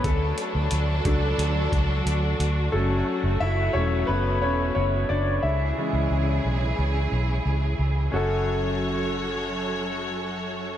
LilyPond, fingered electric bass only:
\new Staff \with { instrumentName = "Fingered electric bass" } { \clef bass \time 4/4 \key fis \minor \tempo 4 = 89 d,8 r16 d,16 d,8 cis,8 d,8 cis,8 d,8 d,8 | fis,,8 r16 fis,,16 fis,,8 e,,8 fis,,8 e,,8 fis,,8 fis,,8 | cis,8 r16 cis,16 cis,8 b,,8 cis,8 b,,8 cis,8 cis,8 | fis,,1 | }